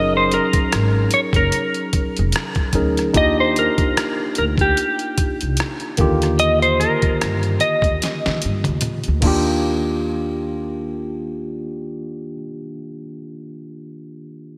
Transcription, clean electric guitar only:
0.00 0.13 D#5 medium
0.17 0.33 C5 medium
0.34 1.16 A#4 medium
1.14 1.20 C#5 medium
1.36 2.12 A#4 medium
3.17 3.37 D#5 medium
3.40 3.55 C5 medium
3.59 4.34 A#4 medium
4.38 4.44 A#4 medium
4.61 5.37 G4 medium
6.40 6.62 D#5 medium
6.62 6.80 C5 medium
6.80 7.63 A#4 medium
7.61 8.78 D#5 medium

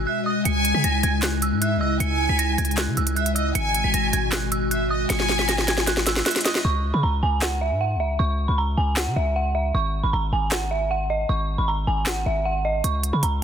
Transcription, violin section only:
0.07 0.25 E5 medium
0.26 0.44 D#5 medium
0.45 1.19 G#5 loud
1.61 1.80 E5 medium
1.81 1.99 D#5 medium
2.00 2.74 G#5 loud
3.17 3.35 E5 medium
3.36 3.54 D#5 medium
3.55 4.29 G#5 loud
4.71 4.90 E5 medium
4.90 5.09 D#5 medium
5.10 5.83 G#5 loud
6.26 6.44 E5 medium
6.45 6.63 D#5 medium

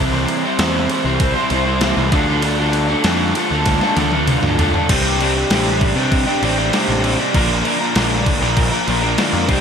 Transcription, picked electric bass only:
0.00 0.25 C2 medium
0.59 0.86 E2 loud
1.05 1.32 C2 medium
1.51 1.92 C2 medium
1.97 2.11 C2 medium
2.12 2.94 D2 loud
3.04 3.32 F2 loud
3.51 3.78 D2 medium
3.97 4.38 D2 loud
4.43 4.70 D2 medium
4.89 5.43 C2 medium
5.50 5.91 A1 medium
5.96 6.23 C3 medium
6.42 6.70 A1 medium
6.88 7.16 A1 medium
7.34 7.62 A#1 medium
7.96 8.23 A#1 medium
8.42 8.69 A#1 loud
8.88 9.15 A#1 loud
9.33 9.47 F2 loud
9.49 9.61 C2 loud

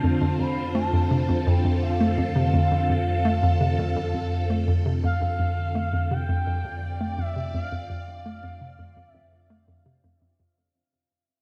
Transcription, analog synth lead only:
0.00 0.41 A5 loud
0.40 0.75 B5 loud
0.76 1.49 A5 loud
1.47 1.82 G5 loud
1.83 4.64 F5 loud
5.04 6.13 F5 loud
6.12 7.20 G5 loud
7.19 7.54 E5 loud
7.55 9.09 F5 loud
9.09 10.00 E5 loud

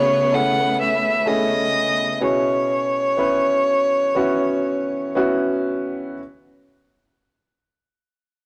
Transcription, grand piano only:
0.00 2.23 C#3 medium
0.00 0.32 A3 medium
0.00 0.33 C#4 medium
0.00 0.33 E4 medium
0.00 0.28 F#4 medium
0.00 0.34 G#4 medium
0.32 1.21 A3 medium
0.32 1.22 C#4 medium
0.32 1.22 E4 medium
0.32 1.22 G#4 medium
1.26 2.16 A3 medium
1.26 2.16 C#4 medium
1.26 2.17 E4 medium
1.26 2.17 G#4 medium
2.20 3.62 B2 medium
2.20 3.12 B3 medium
2.20 3.13 C#4 medium
2.20 3.13 E4 medium
2.20 3.13 G#4 medium
3.17 4.10 B3 medium
3.17 4.11 C#4 medium
3.17 4.11 E4 medium
3.17 4.11 B4 medium
4.15 5.10 B3 medium
4.15 5.11 C#4 medium
4.15 5.11 E4 medium
4.15 5.11 F#4 medium
5.15 6.12 B3 medium
5.15 6.13 C#4 medium
5.15 6.13 E4 medium
5.15 6.13 F#4 medium

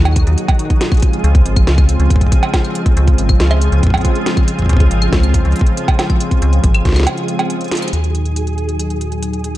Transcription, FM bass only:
0.00 0.24 D#2 medium
0.27 0.36 D#2 medium
1.24 1.42 C#2 loud
1.46 1.64 G#1 medium
1.67 1.97 C#2 medium
2.00 2.09 C#2 medium
2.97 3.15 C#2 loud
3.18 3.36 G#1 medium
3.40 3.69 C#2 medium
3.72 3.81 C#2 medium
4.69 4.87 C#2 loud
4.91 5.09 G#1 medium
5.13 5.42 C#2 medium
5.45 5.54 C#2 medium
6.42 6.60 C#2 loud
6.64 6.82 G#1 medium
6.85 7.07 C#2 medium
7.93 9.58 D#2 medium

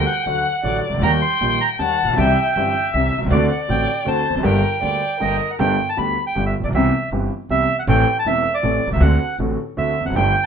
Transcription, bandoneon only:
0.07 0.80 F#5 loud
1.03 1.12 A#5 loud
1.22 1.62 C6 loud
1.61 1.70 A#5 loud
1.79 2.19 A5 loud
2.18 2.90 G5 loud
2.93 3.20 E5 medium
3.32 3.49 D5 medium
3.52 3.60 F#5 medium
3.70 4.09 G5 medium
4.08 4.35 A5 medium
4.36 4.44 A5 medium
4.45 5.37 G5 medium
5.22 5.51 D#5 medium
5.51 5.55 F#5 medium
5.60 5.89 G5 loud
5.89 5.98 A5 medium
5.98 6.25 B5 loud
6.27 6.44 G5 medium
6.46 6.55 E5 medium
6.64 6.68 D5 medium
6.75 7.10 E5 medium
7.51 7.77 E5 loud
7.79 7.83 F#5 medium
7.89 8.17 G5 loud
8.19 8.27 A5 loud
8.27 8.55 E5 loud
8.54 8.89 D5 medium
8.93 9.02 E5 medium
9.01 9.36 F#5 loud
9.78 10.04 E5 medium
10.06 10.15 F#5 medium
10.16 10.45 G5 loud

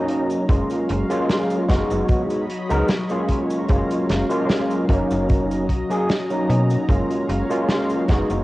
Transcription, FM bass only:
0.49 0.63 F#1 loud
0.90 1.04 F#1 loud
1.70 1.84 F#1 medium
1.91 2.04 F#1 medium
2.71 2.83 C#2 medium
3.70 3.84 F#1 loud
4.10 4.24 F#1 loud
4.89 5.03 F#1 medium
5.11 5.71 F#1 medium
5.69 5.83 B1 medium
6.50 6.77 B2 medium
6.89 7.03 F#1 loud
7.29 7.43 F#1 loud
8.09 8.24 F#1 medium
8.31 8.43 F#1 medium

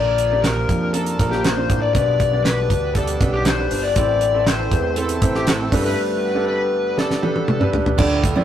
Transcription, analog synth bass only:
0.00 0.66 A#1 medium
0.69 1.16 F2 medium
1.19 1.66 A#1 loud
1.70 1.93 A1 medium
1.95 2.72 B1 loud
2.70 3.17 D2 medium
3.21 3.68 B1 medium
3.71 3.95 G1 medium
3.96 4.68 A1 medium
4.71 5.18 E2 loud
5.22 5.69 A1 medium
5.72 5.96 G1 loud
7.99 8.34 D2 loud
8.36 8.44 F2 medium

